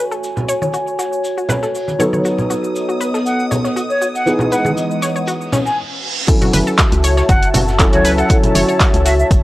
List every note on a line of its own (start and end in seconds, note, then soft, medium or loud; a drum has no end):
0.00 1.96 F#3 medium
0.00 1.96 A3 medium
0.00 1.97 C#4 medium
0.00 1.97 E4 medium
0.00 1.96 F#4 medium
0.00 5.08 F#4 medium
0.00 1.97 A4 medium
0.00 5.08 C#5 medium
0.00 1.96 E5 medium
0.00 2.91 G#5 medium
0.11 0.18 A4 medium
0.11 closed hi-hat soft
0.11 cabasa soft
0.24 cabasa soft
0.24 shaker medium
0.37 low conga medium
0.37 cabasa soft
0.48 0.56 C#5 medium
0.48 cabasa medium
0.48 shaker medium
0.62 0.68 C#5 medium
0.62 high conga medium
0.62 cabasa soft
0.73 0.78 F#4 medium
0.73 cabasa soft
0.73 shaker medium
0.88 cabasa soft
0.99 1.06 F#4 medium
0.99 snare soft
0.99 cabasa medium
0.99 shaker medium
1.13 cabasa soft
1.24 cabasa soft
1.24 shaker medium
1.38 1.47 F#4 medium
1.38 cabasa soft
1.49 1.56 B4 medium
1.49 snare medium
1.49 low conga medium
1.49 cabasa medium
1.49 shaker medium
1.62 1.69 A4 medium
1.62 snare soft
1.62 cabasa soft
1.74 open hi-hat medium
1.74 cabasa soft
1.88 closed hi-hat soft
1.88 high conga medium
1.88 cabasa soft
1.99 4.23 F#3 medium
1.99 4.24 B3 medium
1.99 5.08 B3 medium
1.99 4.24 B3 medium
1.99 4.24 D#4 medium
1.99 4.24 A4 medium
1.99 2.07 C#5 loud
1.99 4.24 D#5 medium
1.99 high conga medium
1.99 cabasa medium
1.99 shaker medium
2.13 2.19 C#5 medium
2.13 high conga medium
2.13 cabasa soft
2.24 2.29 F#4 medium
2.24 5.78 D#6 medium
2.24 cabasa soft
2.24 shaker medium
2.38 low conga medium
2.38 cabasa soft
2.50 2.57 F#4 medium
2.50 cabasa medium
2.50 shaker medium
2.64 cabasa soft
2.75 cabasa soft
2.75 shaker medium
2.89 2.98 F#4 medium
2.89 cabasa soft
3.00 3.08 B4 medium
3.00 cabasa medium
3.00 shaker medium
3.14 3.20 A4 medium
3.14 snare soft
3.14 cabasa soft
3.26 3.45 F#5 medium
3.26 cabasa soft
3.26 shaker medium
3.40 cabasa soft
3.51 3.58 C#5 loud
3.51 low conga medium
3.51 cabasa medium
3.51 shaker medium
3.64 3.71 C#5 medium
3.64 snare soft
3.64 cabasa soft
3.76 3.80 F#4 medium
3.76 cabasa soft
3.76 shaker medium
3.90 4.08 C#5 medium
3.90 cabasa soft
4.01 4.09 F#4 medium
4.01 cabasa medium
4.01 shaker medium
4.15 4.32 F#5 medium
4.15 closed hi-hat soft
4.15 cabasa soft
4.26 5.77 E3 medium
4.26 5.76 E3 medium
4.26 5.78 E3 medium
4.26 5.76 G#3 medium
4.26 5.78 B3 medium
4.26 5.78 D#4 medium
4.26 5.78 G#4 medium
4.26 5.76 D#5 medium
4.26 cabasa soft
4.26 shaker medium
4.39 4.49 F#4 medium
4.39 5.78 F#5 medium
4.39 low conga medium
4.39 cabasa soft
4.52 4.59 B4 loud
4.52 5.78 B4 medium
4.52 4.71 F#5 medium
4.52 cabasa medium
4.52 shaker medium
4.65 4.71 G#4 medium
4.65 high conga medium
4.65 cabasa soft
4.77 cabasa soft
4.77 shaker medium
4.91 cabasa soft
5.02 5.09 C#5 medium
5.02 snare soft
5.02 cabasa medium
5.02 shaker medium
5.16 5.22 C#5 medium
5.16 cabasa soft
5.27 5.32 F#4 medium
5.27 reverse cymbal medium
5.27 cabasa soft
5.27 shaker medium
5.41 cabasa soft
5.52 5.60 C#4 loud
5.52 snare soft
5.52 low conga medium
5.52 cabasa medium
5.52 shaker medium
5.66 5.78 G#5 medium
5.66 snare soft
5.66 cabasa soft
6.27 7.76 F#3 medium
6.27 7.77 C#4 medium
6.27 7.77 E4 medium
6.27 9.43 F#4 medium
6.27 7.77 A4 medium
6.27 9.43 E5 medium
6.27 9.43 A5 medium
6.27 kick loud
6.27 closed hi-hat medium
6.27 crash loud
6.27 cabasa soft
6.27 shaker medium
6.41 6.51 F#4 medium
6.41 closed hi-hat medium
6.41 low conga medium
6.41 cabasa soft
6.47 9.43 C#5 medium
6.53 6.62 F#1 loud
6.53 6.61 B4 loud
6.53 open hi-hat loud
6.53 high conga medium
6.53 cabasa medium
6.53 shaker medium
6.67 6.73 A4 medium
6.67 cabasa soft
6.78 kick loud
6.78 snare loud
6.78 clap loud
6.78 closed hi-hat medium
6.78 cabasa soft
6.78 shaker medium
6.92 7.22 C#2 loud
6.92 closed hi-hat medium
6.92 cabasa soft
7.03 7.11 C#5 loud
7.03 open hi-hat medium
7.03 cabasa medium
7.03 shaker medium
7.17 7.24 C#5 medium
7.17 snare soft
7.17 cabasa soft
7.29 7.46 F#1 loud
7.29 7.33 F#4 medium
7.29 7.48 F#5 medium
7.29 kick loud
7.29 closed hi-hat medium
7.29 cabasa soft
7.29 shaker medium
7.43 closed hi-hat medium
7.43 cabasa soft
7.54 7.94 F#1 loud
7.54 7.61 F#4 medium
7.54 open hi-hat loud
7.54 low conga loud
7.54 cabasa medium
7.54 shaker medium
7.68 snare soft
7.68 cabasa soft
7.79 8.27 F#3 medium
7.79 8.27 C#4 medium
7.79 8.27 E4 medium
7.79 8.27 A4 loud
7.79 kick loud
7.79 snare loud
7.79 clap loud
7.79 closed hi-hat medium
7.79 cabasa soft
7.79 shaker medium
7.93 8.23 C#2 medium
7.93 8.02 F#4 medium
7.93 8.12 C#5 medium
7.93 closed hi-hat medium
7.93 high conga medium
7.93 cabasa soft
8.05 8.12 B4 loud
8.05 open hi-hat medium
8.05 cabasa medium
8.05 shaker medium
8.17 8.24 A4 medium
8.17 8.37 F#5 loud
8.17 closed hi-hat soft
8.17 cabasa soft
8.29 9.43 F#3 medium
8.29 9.43 C#4 medium
8.29 9.43 E4 medium
8.29 9.43 A4 medium
8.29 kick loud
8.29 closed hi-hat medium
8.29 cabasa soft
8.29 shaker medium
8.43 closed hi-hat medium
8.43 low conga medium
8.43 cabasa soft
8.55 8.64 F#1 loud
8.55 8.62 C#5 loud
8.55 open hi-hat loud
8.55 high conga medium
8.55 cabasa medium
8.55 shaker medium
8.69 8.75 C#5 medium
8.69 cabasa soft
8.80 8.85 F#4 medium
8.80 kick loud
8.80 snare loud
8.80 clap loud
8.80 closed hi-hat medium
8.80 cabasa soft
8.80 shaker loud
8.94 9.24 C#2 loud
8.94 closed hi-hat medium
8.94 cabasa soft
9.06 9.13 F#4 medium
9.06 9.14 E5 medium
9.06 snare soft
9.06 open hi-hat medium
9.06 cabasa medium
9.06 shaker medium
9.19 9.27 E5 medium
9.19 cabasa soft
9.31 9.43 F#1 loud
9.31 kick loud
9.31 closed hi-hat medium
9.31 cabasa soft
9.31 shaker medium